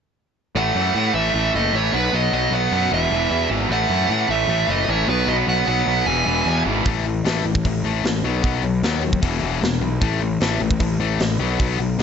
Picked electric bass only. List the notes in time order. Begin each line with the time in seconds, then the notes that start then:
0.55 A1
0.75 F#2
0.95 A2
1.14 A1
1.34 A1
1.54 F#1
1.73 A1
1.93 B1
2.13 B1
2.32 B1
2.51 B1
2.72 F#2
2.92 E1
3.11 E1
3.31 E2
3.50 G#1
3.69 A1
3.89 F#2
4.09 A2
4.29 A1
4.48 A1
4.68 F#1
4.88 A1
5.08 B1
5.27 B1
5.47 B1
5.67 B1
5.86 B1
6.06 E1
6.26 E1
6.46 E2
6.66 G#1
6.86 A1
7.25 A1
7.44 A1
7.65 A1
7.83 A1
8.04 A1
8.24 B1
8.44 B1
8.63 B1
8.83 D#2
9.23 E1
9.42 E1
9.61 E1
9.81 B1
10.01 A1
10.40 A1
10.60 A1
10.80 A1
11.00 A1
11.20 A1
11.39 B1
11.60 B1
11.79 B1
11.98 B1